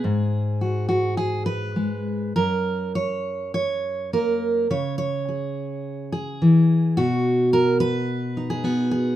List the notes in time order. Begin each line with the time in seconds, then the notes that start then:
Already playing: G#4
0.04 G#2
0.61 F#4
0.89 F#4
1.17 G#4
1.46 B4
1.76 G#3
2.36 F#2 A#4
2.95 C#5
3.54 C#5
4.13 A#3 A#4
4.70 C#3 C#5
4.98 C#5
5.29 G#4
6.12 G#4
6.42 E3
6.97 B2 F#4
7.53 A#4
7.80 B4
8.37 D#4
8.50 G#4
8.64 B3 F#4
8.91 G#4